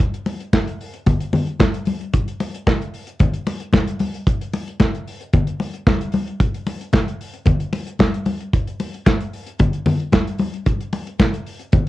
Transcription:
0.00 kick, closed hi-hat, muted conga
0.14 closed hi-hat
0.26 open hi-hat, muted conga
0.41 closed hi-hat
0.53 kick, snare, clap, high conga
0.68 closed hi-hat
0.81 open hi-hat
0.94 closed hi-hat
1.06 kick, closed hi-hat, muted conga, low conga
1.20 closed hi-hat
1.33 open hi-hat, muted conga, low conga
1.47 closed hi-hat
1.59 kick, snare, clap, high conga
1.74 closed hi-hat
1.85 open hi-hat, high conga
2.01 closed hi-hat
2.13 kick, closed hi-hat, muted conga
2.28 closed hi-hat
2.40 open hi-hat, muted conga
2.54 closed hi-hat
2.67 kick, snare, clap, high conga
2.82 closed hi-hat
2.94 open hi-hat
3.07 closed hi-hat
3.20 kick, closed hi-hat, muted conga, low conga
3.34 closed hi-hat
3.47 open hi-hat, muted conga
3.60 closed hi-hat
3.73 kick, snare, clap, high conga
3.87 closed hi-hat
3.99 open hi-hat, high conga
4.14 closed hi-hat
4.27 kick, closed hi-hat, muted conga
4.41 closed hi-hat
4.54 open hi-hat, muted conga
4.68 closed hi-hat
4.80 kick, snare, clap, high conga
4.95 closed hi-hat
5.07 open hi-hat
5.21 closed hi-hat
5.33 kick, closed hi-hat, muted conga, low conga
5.47 closed hi-hat
5.60 open hi-hat, muted conga
5.74 closed hi-hat
5.87 kick, snare, clap, high conga
6.01 closed hi-hat
6.12 open hi-hat, high conga
6.27 closed hi-hat
6.40 kick, closed hi-hat, muted conga
6.54 closed hi-hat
6.67 open hi-hat, muted conga
6.81 closed hi-hat
6.93 kick, snare, clap, high conga
7.08 closed hi-hat
7.21 open hi-hat
7.33 closed hi-hat
7.46 kick, closed hi-hat, muted conga, low conga
7.60 closed hi-hat
7.73 open hi-hat, muted conga
7.87 closed hi-hat
7.99 kick, snare, clap, high conga
8.14 closed hi-hat
8.25 open hi-hat, high conga
8.40 closed hi-hat
8.53 kick, closed hi-hat
8.67 closed hi-hat
8.80 open hi-hat, muted conga
8.94 closed hi-hat
9.06 kick, snare, clap, high conga
9.20 closed hi-hat
9.33 open hi-hat
9.46 closed hi-hat
9.59 kick, closed hi-hat, muted conga, low conga
9.73 closed hi-hat
9.86 open hi-hat, muted conga, low conga
10.00 closed hi-hat
10.12 kick, snare, clap, high conga
10.27 closed hi-hat
10.38 open hi-hat, high conga
10.54 closed hi-hat
10.66 kick, closed hi-hat, muted conga
10.81 closed hi-hat
10.93 open hi-hat, muted conga
11.07 closed hi-hat
11.20 kick, snare, clap, high conga
11.34 closed hi-hat
11.47 open hi-hat
11.59 closed hi-hat
11.72 kick, closed hi-hat, muted conga, low conga

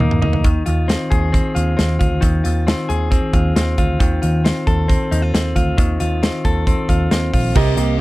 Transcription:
Already playing: D#3 D#4 A#4
0.00 D#2 A#3, mid tom
0.11 mid tom
0.22 D2 D#4, floor tom
0.33 floor tom
0.44 D#2 D#3, kick, closed hi-hat
0.66 D#2 F4, closed hi-hat
0.88 C4, snare, closed hi-hat
1.10 D#2 G#4, kick, closed hi-hat
1.32 C4, kick, closed hi-hat
1.55 D#2 F4, closed hi-hat
1.77 D#2 C4, snare, closed hi-hat
1.99 D2 F4, kick, closed hi-hat
2.21 D#2 D#3, kick, closed hi-hat
2.44 D#2 F4, closed hi-hat
2.67 C4, snare, closed hi-hat
2.89 D#2 G#4, closed hi-hat
3.11 C4, kick, closed hi-hat
3.33 D#2 F4, kick, closed hi-hat
3.56 D#2 C4, snare, closed hi-hat
3.78 D2 F4, kick, closed hi-hat
4.00 D#2 D#3, kick, closed hi-hat
4.22 D#2 F4, closed hi-hat
4.45 C4, snare, closed hi-hat
4.67 D#2 A4, kick, closed hi-hat
4.88 C4, kick, closed hi-hat
5.11 D#2 D#4, closed hi-hat
5.22 F4
5.34 D#2 C4, snare, closed hi-hat
5.56 D2 F4, kick, closed hi-hat
5.78 D#2 D#3, kick, closed hi-hat
6.00 D#2 F4, closed hi-hat
6.23 C4, snare, closed hi-hat
6.45 D#2 A4, kick, closed hi-hat
6.67 C4, kick, closed hi-hat
6.89 D#2 F4, kick, closed hi-hat
7.11 D#2 C4, snare, closed hi-hat
7.33 A#1 F4, kick, open hi-hat
7.55 C2 C3 A#3 C4 G4 A#4 D#5, kick, crash
7.77 C2 A#3 G4 D#5, closed hi-hat

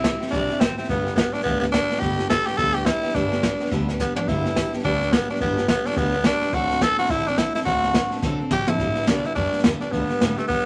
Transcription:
Already playing: E4
0.04 G3 C4 E4 G4, kick, snare, hi-hat pedal
0.20 C4 E4 G4, muted upright bass stroke, snare
0.27 D4, snare
0.32 B1 C3 G3 C4 E4 G4, kick, snare
0.49 C4 E4 G4, muted upright bass stroke, snare
0.60 A1 G3 C4 E4 G4, kick, snare, hi-hat pedal
0.77 C4 E4 G4, muted upright bass stroke, snare
0.84 snare
0.89 G1 G2 D3 G3 B3 D4 G4, kick, snare
1.05 G3 B3 D4 G4, snare
1.16 G3 B3 D4, kick, snare, hi-hat pedal
1.20 G4
1.33 G3 B3 D4 G4, muted upright bass stroke, snare
1.40 B3, snare
1.45 D2 G2 D3 G3 B3 D4 G4, kick, snare
1.60 B3 D4 G4, snare
1.64 G3
1.72 G3 B3 D4 G4, kick, snare, hi-hat pedal
1.89 G3 B3 D4 G4, muted upright bass stroke, snare
1.96 G4, snare
2.01 G1 G2 D3 G3 B3 D4 G4, kick, snare
2.18 G3 B3 D4 G4, snare
2.29 G3 B3 D4 G4 A4, kick, snare, hi-hat pedal
2.46 G3 B3 D4 G4, muted upright bass stroke, snare
2.53 snare
2.57 D2 G2 D3 G3 B3 D4 G4 A4, kick, snare
2.74 G3 B3 D4 G4, snare
2.85 G3 B3 D4 E4 G4, kick, snare, hi-hat pedal
3.02 G3 B3 D4 G4, muted upright bass stroke, snare
3.09 snare
3.14 G1 G2 D3 G3 B3 D4 G4, kick, snare
3.31 G3 B3 D4 G4, snare
3.43 G3 B3 D4 G4, kick, snare, hi-hat pedal
3.59 G3 B3 D4 G4, muted upright bass stroke, snare
3.66 snare
3.71 D2 G2 D3 G3 B3 D4 G4, kick, snare
3.88 G3 B3 D4 G4, snare
4.00 G3 B3 D4 G4, kick, snare, hi-hat pedal
4.16 B3 D4 G4, muted upright bass stroke, floor tom
4.20 G3
4.28 G1 G2 D3 G3 B3 D4 E4 G4, kick, snare
4.45 G3 B3 D4 G4, snare
4.56 G3 B3 D4 G4, kick, snare, hi-hat pedal
4.73 G3 B3 D4 G4, muted upright bass stroke, snare
4.79 snare
4.83 D2 G2 D3 G3 B3 D4 G4, kick, snare
5.00 G3 B3 D4 G4, snare
5.13 G3 B3 D4 G4, kick, snare, hi-hat pedal
5.28 G3 B3 D4 G4, muted upright bass stroke, snare
5.36 snare
5.40 G1 G2 D3 G3 B3 D4 G4, kick, snare
5.57 G3 B3 D4 G4, snare
5.68 G3 B3 D4 G4, kick, snare, hi-hat pedal
5.85 G3 B3 D4 G4, muted upright bass stroke, snare
5.91 snare
5.96 D2 G2 D3 G3 B3 D4 G4, kick, snare
6.13 G3 B3 D4 G4, snare
6.24 G3 D4 G4, kick, snare, hi-hat pedal
6.41 G3 B3 D4 G4, muted upright bass stroke, snare
6.48 snare
6.52 D2 D3 F#3 C4 D4 F#4 A4, kick, snare
6.69 C4 D4 A4, snare
6.81 F#3 C4 D4 A4, kick, snare, hi-hat pedal
6.98 C4 D4 F#4 A4, muted upright bass stroke, snare
7.04 snare
7.09 A1 D3 F#3 C4 D4 E4 A4, kick, snare
7.27 C4 D4 A4, snare
7.38 F#3 C4 D4 E4 A4, kick, snare, hi-hat pedal
7.54 C4 D4 E4 A4, muted upright bass stroke, snare
7.61 snare
7.65 D2 D3 F#3 C4 D4 F#4 A4, kick, snare
7.83 C4 D4 A4, snare
7.94 F#3 C4 D4 A4, kick, snare, hi-hat pedal
8.11 C4 D4 A4, muted upright bass stroke, snare
8.17 snare
8.22 B1 D3 F#3 C4 D4 A4, kick, snare
8.38 D4 A4, muted upright bass stroke
8.42 C4
8.51 A1 F#3 C4 D4 G4 A4, kick, hi-hat pedal, mid tom
8.66 D4 E4 A4, muted upright bass stroke, floor tom
8.70 C4
8.78 G1 G2 D3 G3 B3 D4 G4, kick, snare
8.95 G3 B3 D4 G4, muted upright bass stroke, snare
9.01 snare
9.07 B1 G2 D3 G3 B3 D4 G4, kick, snare, hi-hat pedal
9.24 G3 B3 D4 E4 G4, muted upright bass stroke, snare
9.35 F#2 G3 B3 D4 G4, kick, snare
9.52 G3 B3 D4 G4, muted upright bass stroke, snare
9.58 snare
9.64 E2 G2 D3 G3 B3 D4 G4, kick, snare, hi-hat pedal
9.81 G3 B3 D4 G4, muted upright bass stroke, snare
9.92 D2 G2 D3 G3 B3 D4 G4, kick, snare
10.09 G3 B3 D4 G4, muted upright bass stroke, snare
10.21 G2 A2 D3 G3 B3 D4 G4, kick, snare, hi-hat pedal
10.36 G3 A3 B3 D4 G4, muted upright bass stroke, snare
10.48 G2 G3 B3 D4 G4, kick, snare

